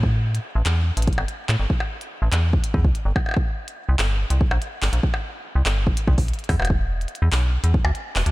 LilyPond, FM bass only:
\new Staff \with { instrumentName = "FM bass" } { \clef bass \time 4/4 \key a \lydian \tempo 4 = 144 a,8. r8 a,,16 e,8 r16 a,,16 r16 g,,16 r8 a,16 g,,16 | r4 r16 a,,16 e,8 r8 e,16 c,16 r16 g,,16 r8 | r4 r16 c,16 g,,8 r16 c,16 r16 bes,,16 r8 g,,16 bes,,16 | r4 r16 c,16 g,,8 r8 c,16 bes,,16 r8 e,16 e,,16~ |
e,,8. r8 e,16 b,,8 r16 e,16 r16 d,16 r8 e,,16 d,16 | }